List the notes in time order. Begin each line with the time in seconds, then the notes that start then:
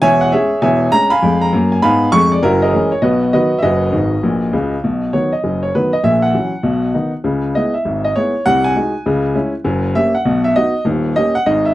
0.02 E1 E2 C#5 E5 G#5
0.21 F#5
0.32 G#3 C#4 G#4 C#5 E5
0.62 E1 E2 C#5 E5 G#5
0.92 G#3 C#4 A#5
1.10 F5 G#5 B5
1.22 F2 G#3
1.41 A#5
1.53 F#2 A#3
1.72 G#5
1.82 G#2 B3 F5 G#5 B5
2.12 F2 G#3 C#6
2.32 D5
2.42 F#1 F#2 E4 F#4 A#4
2.62 G#4 A#4 D#5
2.73 E3 G#3 C#4
2.92 C#5
3.02 B1 B2 F#4 B4 D#5
3.33 D#3 F#3 B3 F#4 B4 D#5
3.59 F#2 D#5 E5
3.63 F#1 F#4 B4
3.92 G#1 G#2
4.23 A#1 A#2
4.53 C#2 C#3
4.84 B1 B2
5.13 D#3 F#3 B3 C#5
5.32 D#5
5.44 F#1 F#2
5.63 C#5
5.75 D#3 F#3 B3 B4
5.93 D#5
6.03 A#1 A#2 E5
6.22 F#5
6.34 E3 F#3 C#4
6.63 B1 B2
6.94 D#3 B3 D#4
7.24 C#2 C#3
7.55 G#3 B3 E4 D#5
7.74 E5
7.85 G#1 G#2
8.04 D#5
8.16 G#3 B3 E4 C#5
8.46 C2 C3 F#5
8.64 G#5
8.76 G#3 D#4 F#4
9.06 C#2 C#3
9.34 G#3 C#4 E4
9.65 F#1 F#2
9.95 A#3 C#4 G4 E5
10.15 F#5
10.25 B1 B2
10.44 E5
10.56 B3 D#4 F#4 D#5
10.85 D#1 D#2
11.16 A#3 C#4 G4 D#5
11.35 F#5
11.46 G#1 G#2 D#5
11.65 E5